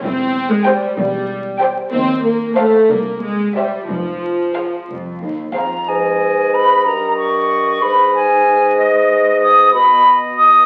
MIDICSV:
0, 0, Header, 1, 10, 480
1, 0, Start_track
1, 0, Key_signature, -4, "minor"
1, 0, Tempo, 634249
1, 24, Time_signature, 6, 3, 24, 8
1, 1464, Tempo, 657174
1, 4349, Key_signature, 5, "minor"
1, 4824, Tempo, 641026
1, 7912, End_track
2, 0, Start_track
2, 0, Title_t, "Flute"
2, 0, Program_c, 0, 73
2, 4110, Note_on_c, 0, 82, 49
2, 4349, Note_on_c, 0, 80, 51
2, 4360, Note_off_c, 0, 82, 0
2, 4830, Note_on_c, 0, 83, 61
2, 4841, Note_off_c, 0, 80, 0
2, 5061, Note_off_c, 0, 83, 0
2, 5065, Note_on_c, 0, 82, 63
2, 5302, Note_off_c, 0, 82, 0
2, 5308, Note_on_c, 0, 85, 61
2, 5789, Note_on_c, 0, 83, 54
2, 5800, Note_off_c, 0, 85, 0
2, 6026, Note_off_c, 0, 83, 0
2, 6031, Note_on_c, 0, 80, 67
2, 6496, Note_off_c, 0, 80, 0
2, 6506, Note_on_c, 0, 75, 60
2, 6977, Note_off_c, 0, 75, 0
2, 6988, Note_on_c, 0, 87, 73
2, 7221, Note_off_c, 0, 87, 0
2, 7226, Note_on_c, 0, 83, 76
2, 7487, Note_off_c, 0, 83, 0
2, 7700, Note_on_c, 0, 87, 79
2, 7912, Note_off_c, 0, 87, 0
2, 7912, End_track
3, 0, Start_track
3, 0, Title_t, "Violin section"
3, 0, Program_c, 1, 48
3, 495, Note_on_c, 1, 79, 63
3, 674, Note_off_c, 1, 79, 0
3, 1219, Note_on_c, 1, 79, 60
3, 1401, Note_off_c, 1, 79, 0
3, 1936, Note_on_c, 1, 77, 57
3, 2114, Note_off_c, 1, 77, 0
3, 2655, Note_on_c, 1, 76, 41
3, 2834, Note_off_c, 1, 76, 0
3, 3379, Note_on_c, 1, 77, 38
3, 3561, Note_off_c, 1, 77, 0
3, 4105, Note_on_c, 1, 77, 36
3, 4285, Note_off_c, 1, 77, 0
3, 7912, End_track
4, 0, Start_track
4, 0, Title_t, "Oboe"
4, 0, Program_c, 2, 68
4, 4348, Note_on_c, 2, 75, 43
4, 7194, Note_off_c, 2, 75, 0
4, 7223, Note_on_c, 2, 75, 53
4, 7912, Note_off_c, 2, 75, 0
4, 7912, End_track
5, 0, Start_track
5, 0, Title_t, "Clarinet"
5, 0, Program_c, 3, 71
5, 4352, Note_on_c, 3, 71, 45
5, 5072, Note_on_c, 3, 70, 44
5, 5083, Note_off_c, 3, 71, 0
5, 5782, Note_off_c, 3, 70, 0
5, 5786, Note_on_c, 3, 71, 45
5, 7196, Note_off_c, 3, 71, 0
5, 7221, Note_on_c, 3, 66, 55
5, 7912, Note_off_c, 3, 66, 0
5, 7912, End_track
6, 0, Start_track
6, 0, Title_t, "Violin section"
6, 0, Program_c, 4, 48
6, 498, Note_on_c, 4, 67, 54
6, 499, Note_on_c, 4, 72, 58
6, 676, Note_off_c, 4, 67, 0
6, 676, Note_off_c, 4, 72, 0
6, 1219, Note_on_c, 4, 67, 53
6, 1221, Note_on_c, 4, 72, 54
6, 1401, Note_off_c, 4, 67, 0
6, 1402, Note_off_c, 4, 72, 0
6, 1930, Note_on_c, 4, 72, 52
6, 1932, Note_on_c, 4, 69, 52
6, 2111, Note_off_c, 4, 72, 0
6, 2112, Note_off_c, 4, 69, 0
6, 2652, Note_on_c, 4, 67, 37
6, 2652, Note_on_c, 4, 72, 41
6, 2832, Note_off_c, 4, 72, 0
6, 2833, Note_off_c, 4, 67, 0
6, 3379, Note_on_c, 4, 72, 36
6, 3380, Note_on_c, 4, 68, 36
6, 3561, Note_off_c, 4, 72, 0
6, 3562, Note_off_c, 4, 68, 0
6, 4104, Note_on_c, 4, 72, 33
6, 4106, Note_on_c, 4, 68, 35
6, 4285, Note_off_c, 4, 72, 0
6, 4286, Note_off_c, 4, 68, 0
6, 7912, End_track
7, 0, Start_track
7, 0, Title_t, "Viola section"
7, 0, Program_c, 5, 48
7, 22, Note_on_c, 5, 60, 83
7, 374, Note_off_c, 5, 60, 0
7, 382, Note_on_c, 5, 56, 71
7, 500, Note_off_c, 5, 56, 0
7, 501, Note_on_c, 5, 55, 62
7, 725, Note_off_c, 5, 55, 0
7, 734, Note_on_c, 5, 55, 67
7, 1209, Note_off_c, 5, 55, 0
7, 1460, Note_on_c, 5, 60, 85
7, 1681, Note_off_c, 5, 60, 0
7, 1696, Note_on_c, 5, 58, 70
7, 1930, Note_off_c, 5, 58, 0
7, 1936, Note_on_c, 5, 57, 72
7, 2170, Note_off_c, 5, 57, 0
7, 2175, Note_on_c, 5, 58, 66
7, 2415, Note_off_c, 5, 58, 0
7, 2416, Note_on_c, 5, 56, 66
7, 2651, Note_off_c, 5, 56, 0
7, 2656, Note_on_c, 5, 55, 53
7, 2892, Note_off_c, 5, 55, 0
7, 2898, Note_on_c, 5, 53, 52
7, 3611, Note_off_c, 5, 53, 0
7, 7912, End_track
8, 0, Start_track
8, 0, Title_t, "Bassoon"
8, 0, Program_c, 6, 70
8, 4350, Note_on_c, 6, 44, 46
8, 5068, Note_on_c, 6, 43, 49
8, 5079, Note_off_c, 6, 44, 0
8, 5779, Note_off_c, 6, 43, 0
8, 5783, Note_on_c, 6, 44, 49
8, 7194, Note_off_c, 6, 44, 0
8, 7224, Note_on_c, 6, 47, 55
8, 7912, Note_off_c, 6, 47, 0
8, 7912, End_track
9, 0, Start_track
9, 0, Title_t, "Cello section"
9, 0, Program_c, 7, 48
9, 27, Note_on_c, 7, 40, 59
9, 602, Note_off_c, 7, 40, 0
9, 743, Note_on_c, 7, 40, 74
9, 1326, Note_off_c, 7, 40, 0
9, 1466, Note_on_c, 7, 39, 62
9, 2040, Note_off_c, 7, 39, 0
9, 2173, Note_on_c, 7, 36, 55
9, 2757, Note_off_c, 7, 36, 0
9, 2890, Note_on_c, 7, 41, 46
9, 3484, Note_off_c, 7, 41, 0
9, 3626, Note_on_c, 7, 41, 40
9, 3850, Note_off_c, 7, 41, 0
9, 3865, Note_on_c, 7, 39, 38
9, 4108, Note_off_c, 7, 39, 0
9, 4111, Note_on_c, 7, 41, 38
9, 4345, Note_off_c, 7, 41, 0
9, 7912, End_track
10, 0, Start_track
10, 0, Title_t, "Double bass section"
10, 0, Program_c, 8, 48
10, 30, Note_on_c, 8, 28, 64
10, 604, Note_off_c, 8, 28, 0
10, 739, Note_on_c, 8, 28, 67
10, 1324, Note_off_c, 8, 28, 0
10, 1465, Note_on_c, 8, 39, 66
10, 2039, Note_off_c, 8, 39, 0
10, 2173, Note_on_c, 8, 36, 57
10, 2757, Note_off_c, 8, 36, 0
10, 2891, Note_on_c, 8, 29, 50
10, 3484, Note_off_c, 8, 29, 0
10, 3624, Note_on_c, 8, 36, 43
10, 4211, Note_off_c, 8, 36, 0
10, 7912, End_track
0, 0, End_of_file